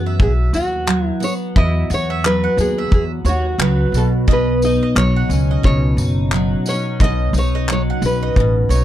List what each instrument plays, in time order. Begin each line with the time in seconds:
Already playing: upright bass F#2, steel-string acoustic guitar E3 F#3 B3 F#4
0.06 mandolin E5
0.20 upright bass B1, nylon-string guitar G#4, kick
0.53 upright bass D#2, steel-string acoustic guitar F#4, nylon-string guitar F#4, tambourine
0.87 steel-string acoustic guitar F#3, clap
1.07 nylon-string guitar E4
1.20 steel-string acoustic guitar B3, nylon-string guitar C#5, tambourine
1.56 upright bass E2, mandolin E4, nylon-string guitar D#5, kick
1.90 upright bass E2, steel-string acoustic guitar F#4, tambourine
1.94 nylon-string guitar C#5
2.10 mandolin E5
2.24 steel-string acoustic guitar F#3, nylon-string guitar B4, clap
2.44 mandolin F#5
2.57 upright bass D#2, steel-string acoustic guitar B3, nylon-string guitar G#4, tambourine
2.78 mandolin E5
2.91 upright bass E2, nylon-string guitar G#4, kick
3.25 upright bass D#2, steel-string acoustic guitar F#4, mandolin C#5, tambourine
3.29 nylon-string guitar F#4
3.58 upright bass C#2, steel-string acoustic guitar F#3, mandolin B4, clap
3.92 upright bass B1, steel-string acoustic guitar B2, tambourine
3.97 nylon-string guitar A4
4.28 steel-string acoustic guitar B2, mandolin D#5, kick
4.33 nylon-string guitar B4
4.62 steel-string acoustic guitar D#4, nylon-string guitar D#5, tambourine
4.83 mandolin D#5
4.95 upright bass B1, steel-string acoustic guitar F#3, nylon-string guitar C#5, clap
5.16 mandolin F#5
5.29 upright bass C#2, steel-string acoustic guitar C#4, tambourine
5.51 mandolin D#5
5.63 upright bass C#2, steel-string acoustic guitar B2, nylon-string guitar C#5, kick
5.97 upright bass F#1, steel-string acoustic guitar D#4, tambourine
6.32 steel-string acoustic guitar F#3, clap
6.66 steel-string acoustic guitar C#4, nylon-string guitar C#5, tambourine
7.00 upright bass B1, steel-string acoustic guitar B2, mandolin D#5, nylon-string guitar D#5, kick
7.33 upright bass B1, steel-string acoustic guitar D#4, tambourine
7.38 nylon-string guitar C#5
7.55 mandolin D#5
7.69 steel-string acoustic guitar F#3, nylon-string guitar C#5, clap
7.90 mandolin F#5
8.02 upright bass B1, steel-string acoustic guitar C#4, tambourine
8.06 nylon-string guitar B4
8.23 mandolin D#5
8.36 upright bass A1, steel-string acoustic guitar B2, kick
8.69 upright bass B1, steel-string acoustic guitar D#4, mandolin C#5, tambourine